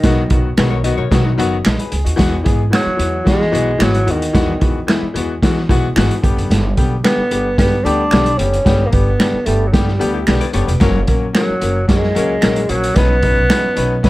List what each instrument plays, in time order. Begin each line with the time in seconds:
Already playing: tenor saxophone D#3
0.03 upright bass B1, grand piano D#3 F#3 B3 F#4, kick, snare, closed hi-hat
0.30 upright bass B1, grand piano D#3 F#3 B3 F#4, kick, closed hi-hat
0.57 upright bass B1, grand piano D#3 F#3 B3 F#4, hollow-body jazz guitar G#4 B4, finger snap, snare, closed hi-hat
0.70 hollow-body jazz guitar A#4 C#5
0.84 grand piano D#3 F#3 B3 F#4, hollow-body jazz guitar B4 D#5, closed hi-hat
0.98 upright bass B2, hollow-body jazz guitar A#4 C#5
1.11 upright bass B2, grand piano D#3 F#3 B3 F#4, hollow-body jazz guitar G#4 B4, kick, snare, closed hi-hat
1.25 hollow-body jazz guitar D#4 F#4
1.38 upright bass F#1, grand piano D#3 F#3 B3 F#4, closed hi-hat
1.65 upright bass A#1, grand piano B4 D#5, finger snap, snare, closed hi-hat
1.79 grand piano G#4 B4, closed hi-hat
1.92 upright bass C#2, grand piano G#4, closed hi-hat
2.04 upright bass D#2, grand piano D#4 F#4, closed hi-hat
2.16 upright bass E2, grand piano E3 G#3 B3 F#4, kick, snare, closed hi-hat
2.43 upright bass G#2, grand piano E3 G#3 B3 G#4, kick, closed hi-hat
2.70 grand piano E3 G#3 B3 F#4, finger snap, snare, closed hi-hat
2.74 tenor saxophone F#3
2.86 muted upright bass stroke
2.97 upright bass E2, grand piano E3 G#3 B3 F#4, closed hi-hat
3.24 grand piano E3 G#3 B3 F#4, upright bass E3, kick, snare, closed hi-hat
3.28 tenor saxophone G#3
3.41 snare
3.52 upright bass B1, grand piano E3 G#3 B3 F#4, closed hi-hat
3.78 upright bass G#1, grand piano E3 G#3 B3 F#4, finger snap, snare, closed hi-hat
3.83 tenor saxophone F#3
3.94 closed hi-hat
4.06 upright bass D#2, grand piano E3 G#3 B3 F#4, closed hi-hat
4.11 tenor saxophone D#3
4.22 closed hi-hat
4.33 upright bass E2, grand piano E3 G#3 B3 F#4, kick, snare, closed hi-hat
4.60 upright bass E2, grand piano E3 G#3 B3 F#4, kick, closed hi-hat
4.87 grand piano E3 G#3 B3 E4, finger snap, snare, closed hi-hat
5.02 muted upright bass stroke
5.14 upright bass E2, grand piano E3 G#3 B3 F#4, closed hi-hat
5.42 grand piano E3 G#3 B3 F#4, upright bass E3, kick, snare, closed hi-hat
5.57 snare
5.69 upright bass B1, grand piano E3 G#3 B3 F#4, kick, closed hi-hat
5.96 upright bass G#1, grand piano E3 G#3 B3 F#4, finger snap, snare, closed hi-hat
6.11 closed hi-hat
6.22 upright bass G1, grand piano D3 G3 B3 G4, kick, closed hi-hat
6.37 upright bass F#1, closed hi-hat
6.50 upright bass G1, snare, closed hi-hat
6.77 upright bass B1, grand piano D3 G3 B3 G4, kick, closed hi-hat
7.04 grand piano D3 G3 B3 G4, tenor saxophone B3, finger snap, snare, closed hi-hat
7.17 muted upright bass stroke
7.31 upright bass G1, grand piano D3 G3 B3 G4, closed hi-hat
7.58 upright bass G2, grand piano D3 G3 B3 G4, tenor saxophone B3, kick, snare, closed hi-hat
7.84 upright bass D2, grand piano D3 G3 B3 G4, tenor saxophone D4, closed hi-hat
8.11 upright bass B1, grand piano D3 G3 B3 G4, finger snap, snare, closed hi-hat
8.26 closed hi-hat
8.37 upright bass F#1, grand piano D3 G3 B3 G4, tenor saxophone C#4, closed hi-hat
8.53 closed hi-hat
8.65 upright bass G1, grand piano D3 G3 B3 G4, kick, snare, closed hi-hat
8.86 tenor saxophone A#3
8.92 upright bass G1, grand piano D3 G3 B3 G4, tenor saxophone B3, kick, closed hi-hat
9.19 grand piano D3 G3 B3 G4, finger snap, snare, closed hi-hat
9.33 muted upright bass stroke
9.46 upright bass G1, grand piano D3 G3 B3 G4, tenor saxophone A3, closed hi-hat
9.67 tenor saxophone F#3
9.72 upright bass G2, grand piano D3 G3 B3 G4, tenor saxophone G3, kick, snare, closed hi-hat
9.88 snare
9.99 upright bass D2, grand piano D3 G3 B3 G4, closed hi-hat
10.14 hollow-body jazz guitar E4 G4
10.27 upright bass B1, grand piano D3 G3 B3 G4, hollow-body jazz guitar G4 B4, finger snap, snare, closed hi-hat
10.41 hollow-body jazz guitar B4 D5, closed hi-hat
10.53 upright bass F#1, grand piano D3 G3 B3 G4, hollow-body jazz guitar A4 C#5, closed hi-hat
10.67 upright bass E1, hollow-body jazz guitar G4 B4, closed hi-hat
10.80 upright bass F#1, grand piano F#3 A#3 C#4 A#4, kick, snare, closed hi-hat
11.07 upright bass A#1, grand piano F#3 A#3 C#4 A#4, kick, closed hi-hat
11.33 grand piano F#3 A#3 C#4 A#4, tenor saxophone F#3, finger snap, snare, closed hi-hat
11.49 muted upright bass stroke
11.61 upright bass F#1, grand piano F#3 A#3 C#4 A#4, closed hi-hat
11.88 upright bass F#2, grand piano F#3 A#3 C#4 A#4, tenor saxophone G#3, kick, snare, closed hi-hat
12.03 snare
12.15 upright bass C#2, grand piano F#3 A#3 C#4 A#4, closed hi-hat
12.41 upright bass A#1, grand piano F#3 A#3 C#4 A#4, finger snap, snare, closed hi-hat
12.56 closed hi-hat
12.69 upright bass A#1, grand piano F#3 A#3 C#4 A#4, tenor saxophone F#3, closed hi-hat
12.84 closed hi-hat
12.96 upright bass B1, grand piano F#3 C#4 D#4 B4, tenor saxophone B3, kick, snare, closed hi-hat
13.22 grand piano F#3 C#4 D#4 B4, kick, closed hi-hat
13.37 upright bass B1
13.49 grand piano F#3 C#4 D#4 B4, finger snap, snare, closed hi-hat
13.64 muted upright bass stroke
13.75 upright bass B1, grand piano F#3 C#4 D#4 B4, closed hi-hat
14.03 upright bass B2, grand piano F#3 C#4 D#4 B4, kick, snare, closed hi-hat